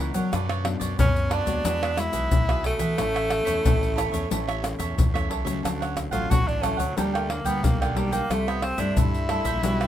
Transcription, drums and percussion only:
0.14 pandeiro, shaker, surdo
0.33 pandeiro, tamborim, shaker, surdo
0.49 pandeiro, tamborim, shaker
0.65 pandeiro, tamborim
0.81 pandeiro, shaker, surdo
0.99 pandeiro, shaker, surdo
1.16 pandeiro, shaker
1.31 pandeiro, tamborim
1.47 pandeiro, shaker, surdo
1.65 pandeiro, shaker, surdo
1.83 pandeiro, tamborim, shaker
1.97 pandeiro, tamborim, shaker
2.13 pandeiro, shaker, surdo
2.31 pandeiro, shaker, surdo
2.49 pandeiro, tamborim, shaker
2.64 pandeiro
2.79 pandeiro, shaker, surdo
2.98 pandeiro, tamborim, shaker, surdo
3.16 pandeiro, tamborim, shaker
3.30 pandeiro, tamborim
3.47 pandeiro, shaker, surdo
3.66 pandeiro, shaker, surdo
3.83 pandeiro, shaker
3.98 pandeiro, tamborim, shaker
4.14 pandeiro, shaker, surdo
4.31 pandeiro, shaker, surdo
4.49 pandeiro, tamborim, shaker
4.64 pandeiro, tamborim, shaker
4.80 pandeiro, shaker, surdo
4.98 pandeiro, shaker, surdo
5.16 pandeiro, tamborim, shaker
5.31 pandeiro
5.47 pandeiro, shaker, surdo
5.65 pandeiro, tamborim, shaker, surdo
5.82 pandeiro, tamborim, shaker
5.97 pandeiro, tamborim, shaker, surdo
6.13 pandeiro, shaker, surdo
6.31 pandeiro, shaker, surdo
6.48 pandeiro, shaker
6.63 pandeiro, tamborim, shaker
6.80 pandeiro, shaker, surdo
6.98 pandeiro, shaker, surdo
7.15 pandeiro, tamborim, shaker
7.30 pandeiro, tamborim
7.46 pandeiro, shaker, surdo
7.64 pandeiro, shaker, surdo
7.82 pandeiro, tamborim, shaker
7.97 pandeiro
8.13 pandeiro, shaker, surdo
8.31 pandeiro, tamborim, shaker, surdo
8.48 pandeiro, tamborim, shaker
8.62 pandeiro, tamborim
8.78 pandeiro, shaker, surdo
8.97 pandeiro, shaker, surdo
9.14 pandeiro, shaker
9.29 pandeiro, tamborim
9.45 pandeiro, shaker, surdo
9.63 pandeiro, shaker, surdo
9.81 pandeiro, tamborim, shaker

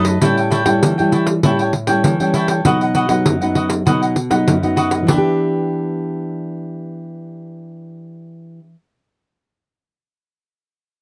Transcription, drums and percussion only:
0.05 pandeiro
0.22 pandeiro
0.37 pandeiro
0.52 pandeiro
0.66 pandeiro
0.83 pandeiro
0.99 pandeiro
1.12 pandeiro
1.27 pandeiro
1.43 pandeiro
1.59 pandeiro
1.73 pandeiro
1.87 pandeiro
2.04 pandeiro
2.20 pandeiro
2.34 pandeiro
2.48 pandeiro
2.65 pandeiro
2.81 pandeiro
2.95 pandeiro
3.09 pandeiro
3.26 pandeiro
3.42 pandeiro
3.55 pandeiro
3.70 pandeiro
3.87 pandeiro
4.02 pandeiro
4.16 pandeiro
4.31 pandeiro
4.48 pandeiro
4.63 pandeiro
4.77 pandeiro
4.91 pandeiro
5.08 pandeiro

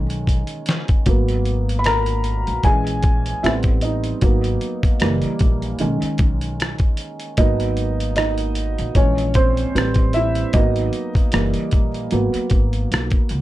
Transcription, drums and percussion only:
0.10 closed hi-hat
0.27 kick, closed hi-hat
0.47 closed hi-hat
0.66 snare, closed hi-hat
0.88 kick, closed hi-hat
1.06 kick, closed hi-hat
1.28 closed hi-hat
1.45 closed hi-hat
1.69 closed hi-hat
1.84 cross-stick, closed hi-hat
2.06 closed hi-hat
2.24 closed hi-hat
2.47 closed hi-hat
2.63 kick, closed hi-hat
2.87 closed hi-hat
3.03 kick, closed hi-hat
3.26 closed hi-hat
3.44 cross-stick, closed hi-hat
3.63 kick, closed hi-hat
3.81 closed hi-hat
4.04 closed hi-hat
4.21 kick, closed hi-hat
4.44 closed hi-hat
4.61 closed hi-hat
4.83 kick, closed hi-hat
5.00 cross-stick, closed hi-hat
5.22 closed hi-hat
5.39 kick, closed hi-hat
5.62 closed hi-hat
5.79 closed hi-hat
6.02 closed hi-hat
6.18 kick, closed hi-hat
6.41 closed hi-hat
6.60 cross-stick, closed hi-hat
6.79 kick, closed hi-hat
6.97 closed hi-hat
7.20 closed hi-hat
7.37 kick, closed hi-hat
7.60 closed hi-hat
7.77 closed hi-hat
8.00 closed hi-hat
8.16 cross-stick, closed hi-hat
8.38 closed hi-hat
8.55 closed hi-hat
8.78 closed hi-hat
8.95 kick, closed hi-hat
9.18 closed hi-hat
9.34 kick, closed hi-hat
9.57 closed hi-hat
9.76 cross-stick, closed hi-hat
9.94 kick, closed hi-hat
10.13 closed hi-hat
10.35 closed hi-hat
10.53 kick, closed hi-hat
10.76 closed hi-hat
10.93 closed hi-hat
11.15 kick, closed hi-hat
11.32 cross-stick, closed hi-hat
11.54 closed hi-hat
11.71 kick, closed hi-hat
11.94 closed hi-hat
12.11 closed hi-hat
12.34 closed hi-hat
12.50 kick, closed hi-hat
12.73 closed hi-hat
12.92 cross-stick, closed hi-hat
13.10 kick, closed hi-hat
13.29 closed hi-hat

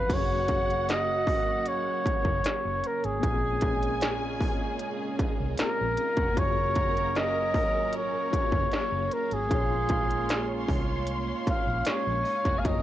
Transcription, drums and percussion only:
0.10 kick, closed hi-hat, crash
0.48 kick, closed hi-hat
0.70 closed hi-hat
0.89 snare, closed hi-hat
1.27 kick, open hi-hat
1.65 closed hi-hat
2.06 kick, closed hi-hat
2.25 kick
2.44 snare, closed hi-hat
2.84 closed hi-hat
3.04 closed hi-hat
3.23 kick, closed hi-hat
3.61 kick, closed hi-hat
3.83 closed hi-hat
4.01 snare, closed hi-hat
4.41 kick, open hi-hat
4.79 closed hi-hat
5.19 kick, closed hi-hat
5.58 snare, closed hi-hat
5.97 closed hi-hat
6.17 kick, closed hi-hat
6.37 kick, closed hi-hat
6.75 kick, closed hi-hat
6.97 closed hi-hat
7.15 snare, closed hi-hat
7.54 kick, open hi-hat
7.93 closed hi-hat
8.33 kick, closed hi-hat
8.52 kick
8.72 snare, closed hi-hat
9.11 closed hi-hat
9.31 closed hi-hat
9.51 kick, closed hi-hat
9.89 kick, closed hi-hat
10.10 closed hi-hat
10.29 snare, closed hi-hat
10.68 kick, open hi-hat
11.07 closed hi-hat
11.47 kick, closed hi-hat
11.85 snare, closed hi-hat
12.25 open hi-hat
12.45 kick, snare, closed hi-hat
12.65 kick, closed hi-hat

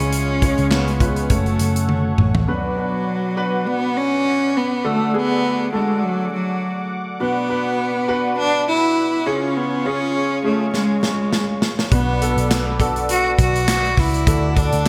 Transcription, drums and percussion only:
0.00 closed hi-hat
0.13 closed hi-hat
0.42 kick, closed hi-hat
0.58 closed hi-hat
0.71 snare, clap
0.88 closed hi-hat
1.00 kick, closed hi-hat
1.16 closed hi-hat
1.30 kick, closed hi-hat
1.46 closed hi-hat
1.59 closed hi-hat
1.76 closed hi-hat
1.89 high tom
2.18 mid tom
2.35 floor tom
10.74 snare
11.03 snare
11.33 snare
11.62 snare
11.79 snare
11.92 kick, closed hi-hat
12.22 closed hi-hat
12.38 closed hi-hat
12.51 snare, clap, closed hi-hat
12.80 kick, closed hi-hat
12.96 closed hi-hat
13.09 closed hi-hat
13.39 kick, closed hi-hat
13.56 closed hi-hat
13.68 snare, clap, closed hi-hat
13.85 closed hi-hat
13.97 kick, snare, open hi-hat
14.14 closed hi-hat
14.27 kick, closed hi-hat
14.57 kick, closed hi-hat
14.73 closed hi-hat

